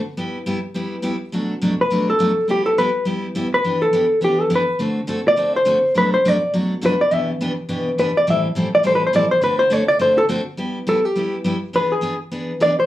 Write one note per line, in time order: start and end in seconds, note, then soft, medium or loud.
0.17 0.37 G3 medium
0.17 0.37 B3 medium
0.17 0.38 E4 medium
0.17 0.38 G4 medium
0.46 0.57 G3 medium
0.46 0.58 B3 medium
0.46 0.58 E4 medium
0.46 0.58 G4 medium
0.74 0.94 G3 medium
0.74 0.95 B3 medium
0.74 0.95 E4 medium
0.74 0.95 G4 medium
1.02 1.14 G3 medium
1.02 1.14 B3 medium
1.02 1.15 E4 medium
1.02 1.15 G4 loud
1.32 1.52 B2 medium
1.32 1.53 F#3 medium
1.32 1.53 A3 medium
1.32 1.53 D4 medium
1.32 1.53 F#4 medium
1.62 1.73 B2 medium
1.62 1.73 F#3 medium
1.62 1.73 A3 medium
1.62 1.73 D4 medium
1.62 1.73 F#4 medium
1.81 2.07 B4 medium
1.90 2.10 B2 medium
1.90 2.10 F#3 medium
1.90 2.11 A3 medium
1.90 2.11 D4 medium
1.90 2.11 F#4 medium
2.10 2.47 A4 medium
2.19 2.30 B2 medium
2.19 2.31 F#3 medium
2.19 2.31 A3 medium
2.19 2.31 D4 medium
2.19 2.31 F#4 medium
2.48 2.68 G3 medium
2.48 2.68 B3 medium
2.48 2.68 E4 medium
2.48 2.69 G4 medium
2.48 2.66 G4 medium
2.66 2.77 A4 medium
2.78 2.89 G3 medium
2.78 2.89 B3 medium
2.78 2.89 E4 medium
2.78 2.89 G4 medium
2.78 3.05 B4 medium
3.05 3.25 G3 medium
3.05 3.26 B3 medium
3.05 3.26 E4 medium
3.05 3.26 G4 medium
3.35 3.46 G3 medium
3.35 3.46 B3 medium
3.35 3.46 E4 medium
3.35 3.47 G4 medium
3.54 3.81 B4 medium
3.64 3.84 E3 medium
3.64 3.84 B3 medium
3.64 3.84 D4 medium
3.64 3.85 G4 medium
3.82 4.19 A4 medium
3.93 4.04 E3 medium
3.93 4.04 B3 medium
3.93 4.04 D4 medium
3.93 4.05 G4 medium
4.21 4.41 E3 medium
4.21 4.41 B3 medium
4.21 4.42 D4 medium
4.21 4.42 G4 medium
4.21 4.41 G4 medium
4.41 4.51 A4 medium
4.50 4.61 E3 medium
4.50 4.62 B3 medium
4.50 4.62 D4 medium
4.50 4.62 G4 medium
4.55 4.80 B4 medium
4.79 4.99 D3 medium
4.79 4.99 A3 medium
4.79 4.99 C4 medium
4.79 5.00 F#4 medium
4.79 5.00 A4 medium
5.07 5.19 D3 medium
5.07 5.19 A3 medium
5.07 5.20 C4 medium
5.07 5.20 F#4 medium
5.07 5.20 A4 medium
5.28 5.54 D5 loud
5.36 5.57 D3 medium
5.36 5.57 A3 medium
5.36 5.57 C4 medium
5.36 5.57 F#4 medium
5.36 5.58 A4 medium
5.56 5.93 C5 medium
5.65 5.77 D3 medium
5.65 5.77 A3 medium
5.65 5.77 C4 medium
5.65 5.78 F#4 medium
5.65 5.78 A4 medium
5.95 6.15 B2 medium
5.95 6.15 F#3 medium
5.95 6.15 A3 medium
5.95 6.15 D4 medium
5.95 6.15 F#4 medium
5.95 6.13 B4 medium
6.14 6.28 C5 medium
6.25 6.36 B2 medium
6.25 6.36 F#3 medium
6.25 6.36 A3 medium
6.25 6.36 D4 medium
6.25 6.36 F#4 medium
6.25 6.55 D5 medium
6.54 6.73 B2 medium
6.54 6.73 F#3 medium
6.54 6.73 A3 medium
6.54 6.73 D4 medium
6.54 6.73 F#4 medium
6.81 6.93 B2 medium
6.81 6.93 F#3 medium
6.81 6.93 A3 medium
6.81 6.94 D4 medium
6.81 6.94 F#4 medium
6.86 7.01 B4 medium
7.01 7.13 D5 medium
7.11 7.31 B2 medium
7.11 7.31 E3 medium
7.11 7.31 B3 medium
7.11 7.31 D4 medium
7.11 7.31 G4 medium
7.11 7.29 E5 loud
7.41 7.51 B2 medium
7.41 7.51 E3 medium
7.41 7.51 B3 medium
7.41 7.52 D4 medium
7.41 7.52 G4 medium
7.69 7.88 B2 medium
7.69 7.88 E3 medium
7.69 7.89 B3 medium
7.69 7.89 D4 medium
7.69 7.89 G4 medium
7.98 8.09 B2 medium
7.98 8.09 E3 medium
7.98 8.09 B3 medium
7.98 8.10 D4 medium
7.98 8.10 G4 medium
7.98 8.16 B4 medium
8.17 8.28 D5 loud
8.27 8.46 A2 medium
8.27 8.47 E3 medium
8.27 8.47 G3 medium
8.27 8.47 C4 medium
8.27 8.47 E4 medium
8.27 8.47 A4 medium
8.27 8.40 E5 loud
8.55 8.66 A2 medium
8.55 8.67 E3 medium
8.55 8.67 G3 medium
8.55 8.67 C4 medium
8.55 8.67 E4 medium
8.55 8.67 A4 medium
8.75 8.85 D5 loud
8.83 9.03 A2 medium
8.83 9.04 E3 medium
8.83 9.04 G3 medium
8.83 9.04 C4 medium
8.83 9.04 E4 medium
8.83 9.04 A4 medium
8.83 8.95 C5 medium
8.95 9.04 B4 medium
9.07 9.15 C5 medium
9.13 9.24 A2 medium
9.13 9.24 E3 medium
9.13 9.25 G3 medium
9.13 9.24 C4 medium
9.13 9.25 E4 medium
9.13 9.25 A4 medium
9.13 9.31 D5 loud
9.31 9.42 C5 loud
9.41 9.62 D3 medium
9.41 9.62 A3 medium
9.41 9.62 C4 medium
9.41 9.62 F#4 medium
9.41 9.62 A4 medium
9.41 9.59 B4 medium
9.59 9.73 C5 loud
9.70 9.82 D3 medium
9.70 9.82 A3 medium
9.70 9.82 C4 medium
9.70 9.82 F#4 medium
9.70 9.82 A4 medium
9.70 9.88 C#5 medium
9.88 10.00 D5 loud
9.99 10.19 D3 medium
9.99 10.19 A3 medium
9.99 10.19 C4 medium
9.99 10.20 F#4 medium
9.99 10.20 A4 medium
9.99 10.18 C5 medium
10.18 10.25 A4 loud
10.29 10.40 D3 medium
10.29 10.40 A3 medium
10.29 10.40 C4 medium
10.29 10.40 F#4 medium
10.29 10.41 A4 medium
10.57 10.77 G3 medium
10.57 10.78 B3 medium
10.57 10.78 E4 medium
10.57 10.78 G4 medium
10.87 10.98 G3 medium
10.87 10.98 B3 medium
10.87 10.98 E4 medium
10.87 10.98 G4 medium
10.87 11.05 A4 medium
11.05 11.34 G4 medium
11.15 11.35 G3 medium
11.15 11.36 B3 medium
11.15 11.36 E4 medium
11.15 11.36 G4 medium
11.44 11.56 G3 medium
11.44 11.56 B3 medium
11.44 11.56 E4 medium
11.44 11.56 G4 medium
11.73 11.93 E3 medium
11.73 11.93 B3 medium
11.73 11.93 D4 medium
11.73 11.94 G#4 medium
11.73 11.92 B4 medium
11.92 12.19 G#4 medium
12.01 12.13 E3 medium
12.01 12.13 B3 medium
12.01 12.13 D4 medium
12.01 12.14 G#4 medium
12.31 12.51 E3 medium
12.31 12.51 B3 medium
12.31 12.52 D4 medium
12.31 12.52 G#4 medium
12.60 12.71 E3 medium
12.60 12.72 B3 medium
12.60 12.72 D4 medium
12.60 12.72 G#4 medium
12.60 12.79 D5 medium
12.80 12.86 C5 medium